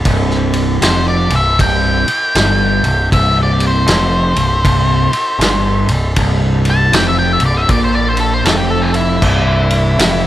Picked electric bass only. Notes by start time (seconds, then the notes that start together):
0.05 C1
0.82 F1
1.30 C1
1.59 C1
2.06 muted picked electric bass stroke
2.35 G1
2.83 C1
3.12 C1
3.88 F1
4.35 C1
4.65 C1
5.11 muted picked electric bass stroke
5.39 G1
5.87 C1
6.17 C1
6.92 F1
7.40 C1
7.69 A#1
8.45 F1
9.22 C1
9.98 F1